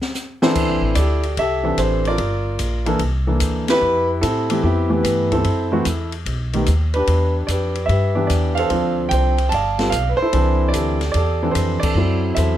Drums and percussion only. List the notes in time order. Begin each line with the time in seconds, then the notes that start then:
0.02 snare
0.15 snare, hi-hat pedal
0.42 snare
0.55 kick, crash
0.95 kick, hi-hat pedal, ride
1.23 ride
1.37 kick, ride
1.78 kick, hi-hat pedal, ride
2.05 ride
2.18 kick, ride
2.59 kick, hi-hat pedal, ride
2.86 ride
2.99 kick, ride
3.40 hi-hat pedal, ride
3.68 snare, ride
4.23 kick, hi-hat pedal, ride
4.50 ride
4.64 kick
5.04 kick, hi-hat pedal, ride
5.32 kick, ride
5.44 kick, ride
5.85 kick, hi-hat pedal, ride
6.12 ride
6.26 kick, ride
6.53 ride
6.66 kick, hi-hat pedal, ride
6.94 ride
7.07 kick, ride
7.48 kick, hi-hat pedal, ride
7.75 ride
7.89 kick, ride
8.30 kick, hi-hat pedal, ride
8.57 ride
8.70 kick, ride
9.11 kick, hi-hat pedal, ride
9.38 ride
9.52 kick, ride
9.79 snare, ride
9.92 kick, hi-hat pedal, ride
10.33 kick, ride
10.73 kick, hi-hat pedal, ride
11.01 snare, ride
11.14 kick, ride
11.55 kick, hi-hat pedal, ride
11.83 kick, crash
12.36 kick, hi-hat pedal, ride